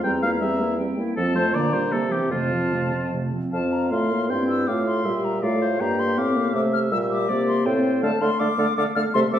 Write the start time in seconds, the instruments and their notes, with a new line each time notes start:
0.03 bassoon E2, french horn G3, clarinet C4, oboe G5, flute A#5
0.23 french horn A#3, clarinet E4, oboe F5
0.41 french horn G3, clarinet C4, oboe E5
0.60 french horn A#3, clarinet E4
0.79 french horn G3, clarinet C4, flute G5
0.98 french horn A#3, clarinet E4
1.16 bassoon F2, french horn F3, clarinet C4, oboe A4, flute A5
1.35 french horn A3, clarinet F4, oboe C5
1.53 bassoon A#2, french horn D3, clarinet A#3, oboe D5, flute A#5
1.73 french horn G3, clarinet D4, oboe C5
1.92 bassoon C3, french horn G3, clarinet A#3, oboe A4
2.12 french horn E3, clarinet C4, oboe G4
2.31 bassoon F2, french horn C3, clarinet A3, oboe F4, flute A5
2.52 french horn F3, clarinet C4
2.73 french horn C3, clarinet A3
2.93 french horn F3, clarinet C4
3.13 french horn C3, clarinet A3
3.33 french horn F3, clarinet C4
3.53 bassoon F2, french horn C4, clarinet F4, oboe F5, flute A5
3.72 flute A#5
3.91 bassoon A2, french horn A3, clarinet F4, oboe F5, flute C6
4.11 french horn A#3
4.29 bassoon G2, french horn C4, clarinet E4, oboe G5, flute C6
4.48 flute E6
4.67 bassoon A2, french horn A3, clarinet F4, oboe F5, flute D6
4.87 flute C6
5.05 bassoon A#2, french horn G3, clarinet G4, oboe E5
5.25 flute A#5
5.42 bassoon A2, french horn A3, clarinet F4, oboe D5, flute F5
5.62 oboe C5
5.80 bassoon G2, french horn A#3, clarinet G4, oboe G5, flute A#5
6.00 flute C6
6.17 bassoon A2, french horn C4, oboe F5, flute D6
6.37 french horn A#3
6.54 bassoon C3, french horn A3, oboe E5, flute D6
6.73 flute F6
6.92 bassoon A#2, french horn G3, clarinet G4, flute E6
7.10 flute D6
7.29 bassoon C3, french horn A#3, oboe D5
7.47 flute C6
7.66 bassoon A2, french horn C4, clarinet A4, oboe C5, flute G5
8.03 bassoon D3, french horn A3, clarinet A4, oboe F5, flute A5
8.21 bassoon D3, french horn A3, clarinet A4, oboe F5, flute C6
8.40 bassoon D3, french horn A3, clarinet A4, oboe F5, flute D6
8.58 bassoon D3, french horn A3, clarinet A4, oboe F5
8.77 bassoon D3, french horn A3, clarinet A4, oboe F5, flute D6
8.95 bassoon D3, french horn A3, clarinet A4, oboe F5, flute F6
9.14 bassoon C3, french horn A3, clarinet A4, oboe E5, flute C6
9.32 bassoon C3, french horn A3, clarinet A4, oboe E5, flute D6